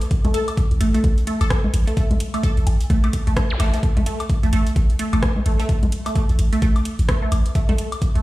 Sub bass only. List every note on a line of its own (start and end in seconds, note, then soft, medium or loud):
0.25 0.32 A1 loud
0.71 0.79 A1 loud
0.81 0.92 A1 medium
1.04 1.15 A1 medium
1.41 1.49 A1 loud
1.74 1.85 A1 medium
2.11 2.19 A1 loud
2.57 2.65 A1 loud
2.67 2.78 A1 medium
2.90 3.01 A1 medium
3.27 3.35 A1 loud
3.60 3.71 A1 medium
3.97 4.05 A1 loud
4.43 4.51 A1 loud
4.53 4.64 A1 medium
4.76 4.87 A1 medium
5.13 5.21 A1 loud
5.46 5.57 A1 medium
5.83 5.91 A1 loud
6.29 6.37 A1 loud
6.39 6.50 A1 medium
6.62 6.73 A1 medium
6.99 7.07 A1 loud
7.32 7.43 A1 medium
7.69 7.77 A1 loud
8.15 8.22 A1 loud